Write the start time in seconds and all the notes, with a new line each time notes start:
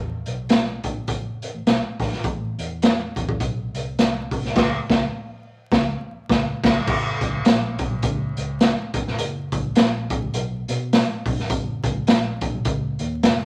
Already playing: E2
0.26 B1, closed hi-hat
0.49 snare, closed hi-hat
0.84 G#1, kick, closed hi-hat
1.08 F#1, kick, closed hi-hat
1.42 closed hi-hat
1.55 A1
1.66 B1, snare, closed hi-hat
2.00 A1, kick, snare, open hi-hat
2.13 G#1, snare
2.24 A1, kick, closed hi-hat
2.58 E2, closed hi-hat
2.82 snare, closed hi-hat
3.16 E2, kick, closed hi-hat
3.29 kick
3.40 B1, kick, closed hi-hat
3.74 C2, closed hi-hat
3.98 C2, snare, closed hi-hat
4.31 C2, kick, open hi-hat
4.45 snare
4.56 C#2, kick, snare, crash
4.90 C#2, kick, snare
5.72 C#2, kick, snare
6.29 C#2, kick, snare
6.64 C#2, kick, snare, crash
6.87 F#1, kick, crash
7.21 C#2, kick, closed hi-hat
7.45 A#1, snare, closed hi-hat
7.79 kick, closed hi-hat
7.91 B1
8.02 C#2, kick, closed hi-hat
8.37 C#2, closed hi-hat
8.61 snare, closed hi-hat
8.94 F#1, kick, closed hi-hat
9.06 F1, snare
9.18 F#1, closed hi-hat
9.52 C#2, kick, closed hi-hat
9.76 A#1, snare, closed hi-hat
10.10 kick, closed hi-hat
10.23 C#2
10.34 B1, closed hi-hat
10.68 B2, closed hi-hat
10.93 snare, closed hi-hat
11.26 B1, kick, open hi-hat
11.38 F1, snare
11.50 F#1, kick, closed hi-hat
11.84 C#2, kick, closed hi-hat
12.07 A#1, snare, closed hi-hat
12.41 kick, closed hi-hat
12.55 B1
12.65 C#2, kick, closed hi-hat
12.99 D#2, closed hi-hat
13.23 F1, snare, closed hi-hat